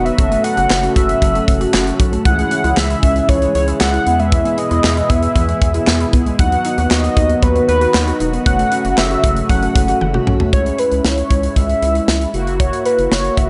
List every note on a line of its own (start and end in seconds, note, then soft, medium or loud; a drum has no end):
0.00 0.11 E1 medium
0.00 0.16 D#3 medium
0.00 2.21 F#3 medium
0.00 0.15 B3 medium
0.00 0.16 B3 medium
0.00 0.15 D#4 medium
0.00 0.15 F#4 medium
0.00 2.21 F#4 medium
0.05 0.15 B3 medium
0.05 0.43 E5 loud
0.05 closed hi-hat soft
0.18 0.37 F#1 loud
0.18 2.23 C#3 medium
0.18 0.27 F#3 loud
0.18 2.23 A3 medium
0.18 2.21 C#4 medium
0.18 2.21 F#4 medium
0.18 2.21 A4 medium
0.18 kick loud
0.18 closed hi-hat medium
0.32 0.40 A3 medium
0.32 closed hi-hat medium
0.44 0.53 C#4 medium
0.44 0.92 F#5 loud
0.44 closed hi-hat medium
0.57 0.66 F#1 loud
0.57 0.66 F#4 medium
0.57 closed hi-hat medium
0.70 0.88 F#1 loud
0.70 0.79 F#5 medium
0.70 snare loud
0.70 clap loud
0.83 0.92 F#4 medium
0.83 closed hi-hat medium
0.96 1.14 F#1 loud
0.96 1.05 C#4 medium
0.96 1.95 E5 loud
0.96 kick loud
0.96 closed hi-hat medium
1.09 closed hi-hat medium
1.22 1.40 F#1 loud
1.22 1.31 F#3 medium
1.22 kick medium
1.22 closed hi-hat medium
1.35 1.44 A3 medium
1.35 closed hi-hat soft
1.48 1.66 F#1 loud
1.48 kick medium
1.48 closed hi-hat medium
1.61 1.70 F#4 medium
1.61 closed hi-hat medium
1.74 1.92 F#1 loud
1.74 1.83 F#5 medium
1.74 snare loud
1.74 clap loud
1.87 1.96 F#4 medium
1.87 closed hi-hat medium
2.00 2.18 B1 medium
2.00 2.08 C#4 medium
2.00 kick loud
2.00 closed hi-hat medium
2.12 2.21 A3 medium
2.12 closed hi-hat soft
2.25 2.44 C#2 loud
2.25 4.05 C#3 medium
2.25 6.35 E3 medium
2.25 2.34 E3 loud
2.25 6.35 G#3 medium
2.25 4.03 C#4 medium
2.25 4.05 E4 medium
2.25 4.03 E4 medium
2.25 4.03 G#4 medium
2.25 2.79 F#5 loud
2.25 kick loud
2.25 closed hi-hat medium
2.38 2.47 G#3 medium
2.38 closed hi-hat medium
2.51 2.60 C#4 medium
2.51 closed hi-hat medium
2.64 2.73 C#2 loud
2.64 2.73 E4 medium
2.64 closed hi-hat medium
2.77 2.95 C#2 loud
2.77 2.86 E5 medium
2.77 3.30 E5 loud
2.77 snare loud
2.77 clap medium
2.90 2.99 E4 medium
2.90 closed hi-hat medium
3.03 3.21 C#2 medium
3.03 3.12 C#4 medium
3.03 kick loud
3.03 closed hi-hat medium
3.16 closed hi-hat medium
3.29 3.47 C#2 loud
3.29 3.38 E3 medium
3.29 3.54 C#5 loud
3.29 kick medium
3.29 closed hi-hat medium
3.42 3.51 G#3 medium
3.42 closed hi-hat soft
3.55 3.73 C#2 loud
3.55 3.67 C#5 medium
3.55 closed hi-hat medium
3.68 3.77 E4 medium
3.68 closed hi-hat medium
3.81 3.99 C#2 loud
3.81 3.89 E5 medium
3.81 4.21 F#5 loud
3.81 snare loud
3.81 clap loud
3.94 4.02 E4 medium
3.94 closed hi-hat medium
4.06 4.43 E2 loud
4.06 6.37 B2 medium
4.06 6.35 B3 medium
4.06 4.15 B3 medium
4.06 6.35 E4 medium
4.06 6.37 E4 medium
4.06 6.35 G#4 medium
4.06 closed hi-hat medium
4.19 4.28 G#3 medium
4.19 4.60 E5 loud
4.19 closed hi-hat soft
4.32 4.41 E3 loud
4.32 kick loud
4.32 closed hi-hat medium
4.45 4.54 G#3 medium
4.45 closed hi-hat medium
4.58 4.67 B3 medium
4.58 5.12 D#5 loud
4.58 closed hi-hat medium
4.71 4.80 E2 loud
4.71 4.80 E4 medium
4.71 closed hi-hat medium
4.84 5.02 E2 loud
4.84 4.93 E5 loud
4.84 snare loud
4.84 clap medium
4.97 5.06 E4 medium
4.97 closed hi-hat medium
5.10 5.28 E2 loud
5.10 5.19 B3 medium
5.10 6.13 E5 medium
5.10 kick loud
5.10 closed hi-hat medium
5.23 closed hi-hat medium
5.36 5.54 E2 loud
5.36 5.45 E3 medium
5.36 kick medium
5.36 closed hi-hat medium
5.49 5.58 G#3 medium
5.49 closed hi-hat soft
5.62 5.80 E2 loud
5.62 kick medium
5.62 closed hi-hat medium
5.74 5.83 E4 medium
5.74 closed hi-hat medium
5.87 6.06 E2 loud
5.87 5.96 E5 loud
5.87 snare loud
5.87 clap medium
6.00 6.09 E4 medium
6.00 closed hi-hat medium
6.13 6.31 C#2 medium
6.13 6.22 B3 medium
6.13 kick loud
6.13 closed hi-hat medium
6.26 6.35 G#3 medium
6.26 closed hi-hat soft
6.39 6.57 D#2 loud
6.39 8.44 D#3 medium
6.39 6.48 F#3 medium
6.39 8.44 F#3 medium
6.39 8.42 B3 medium
6.39 8.44 B3 medium
6.39 8.42 D#4 medium
6.39 8.42 F#4 medium
6.39 10.49 F#4 medium
6.39 6.92 F#5 loud
6.39 kick loud
6.39 closed hi-hat medium
6.52 6.61 B3 medium
6.52 closed hi-hat medium
6.65 6.74 D#4 medium
6.65 closed hi-hat medium
6.78 6.87 D#2 loud
6.78 6.87 F#4 medium
6.78 closed hi-hat medium
6.91 7.09 D#2 loud
6.91 7.44 D#5 loud
6.91 7.00 F#5 medium
6.91 snare loud
6.91 clap loud
7.04 7.13 F#4 medium
7.04 closed hi-hat medium
7.17 7.35 D#2 loud
7.17 7.26 D#4 medium
7.17 kick loud
7.17 closed hi-hat medium
7.29 closed hi-hat medium
7.43 7.61 D#2 loud
7.43 7.52 F#3 medium
7.43 7.68 B4 medium
7.43 kick medium
7.43 closed hi-hat medium
7.56 7.65 B3 medium
7.56 closed hi-hat soft
7.68 7.87 D#2 loud
7.68 8.17 B4 medium
7.68 closed hi-hat medium
7.81 7.90 F#4 medium
7.81 closed hi-hat medium
7.94 8.12 D#2 medium
7.94 8.03 F#5 loud
7.94 snare loud
7.94 clap loud
8.07 8.16 F#4 medium
8.07 closed hi-hat medium
8.20 8.38 E1 medium
8.20 8.29 D#4 medium
8.20 closed hi-hat medium
8.33 8.42 B3 medium
8.33 closed hi-hat soft
8.46 8.64 F#1 loud
8.46 10.51 C#3 medium
8.46 10.51 F#3 medium
8.46 8.55 F#3 medium
8.46 10.51 A3 medium
8.46 10.49 A3 medium
8.46 10.49 C#4 medium
8.46 10.49 F#4 medium
8.46 8.99 F#5 loud
8.46 kick loud
8.46 closed hi-hat medium
8.59 8.68 A3 medium
8.59 closed hi-hat medium
8.72 8.81 C#4 medium
8.72 closed hi-hat medium
8.85 8.94 F#1 loud
8.85 8.94 F#4 medium
8.85 closed hi-hat medium
8.98 9.16 F#1 loud
8.98 9.49 E5 loud
8.98 9.07 F#5 medium
8.98 snare loud
8.98 clap medium
9.11 9.20 F#4 medium
9.11 closed hi-hat medium
9.24 9.42 F#1 loud
9.24 9.33 C#4 medium
9.24 kick medium
9.24 closed hi-hat medium
9.37 closed hi-hat medium
9.49 9.68 F#1 loud
9.49 9.58 F#3 medium
9.49 9.98 F#5 loud
9.49 kick medium
9.49 closed hi-hat medium
9.63 9.71 A3 medium
9.63 closed hi-hat soft
9.76 9.94 F#1 medium
9.76 kick loud
9.76 closed hi-hat medium
9.88 9.97 F#4 medium
9.88 closed hi-hat medium
10.01 10.19 F#1 loud
10.01 10.10 F#5 loud
10.01 high tom medium
10.14 10.23 F#4 medium
10.14 mid tom medium
10.27 10.45 B1 medium
10.27 10.36 C#4 medium
10.27 mid tom medium
10.40 10.49 A3 medium
10.40 floor tom medium
10.53 10.71 C#2 loud
10.53 12.30 G#3 medium
10.53 12.30 C#4 medium
10.53 12.31 E4 medium
10.53 10.81 C#5 loud
10.53 kick loud
10.53 closed hi-hat medium
10.66 closed hi-hat medium
10.78 11.06 B4 medium
10.78 closed hi-hat medium
10.92 11.01 C#2 loud
10.92 closed hi-hat soft
11.04 11.23 C#2 loud
11.04 11.58 C#5 loud
11.04 snare loud
11.18 closed hi-hat medium
11.30 11.49 C#2 medium
11.30 kick medium
11.30 closed hi-hat medium
11.43 closed hi-hat soft
11.56 11.74 C#2 loud
11.56 12.34 E5 loud
11.56 kick medium
11.56 closed hi-hat medium
11.69 closed hi-hat soft
11.82 12.00 C#2 loud
11.82 closed hi-hat medium
11.95 closed hi-hat medium
12.08 12.26 C#2 loud
12.08 snare loud
12.21 closed hi-hat soft
12.34 12.70 F#1 loud
12.34 13.50 A#3 medium
12.34 13.50 E4 medium
12.34 13.50 F#4 medium
12.34 closed hi-hat medium
12.47 closed hi-hat soft
12.60 12.84 C#5 loud
12.60 kick loud
12.60 closed hi-hat medium
12.73 closed hi-hat medium
12.86 13.10 B4 medium
12.86 closed hi-hat medium
12.98 13.08 F#1 loud
12.98 closed hi-hat medium
13.11 13.30 F#1 loud
13.11 13.39 C#5 loud
13.11 snare loud
13.25 closed hi-hat medium
13.37 13.50 F#1 loud
13.37 13.50 E5 loud
13.37 kick medium
13.37 closed hi-hat medium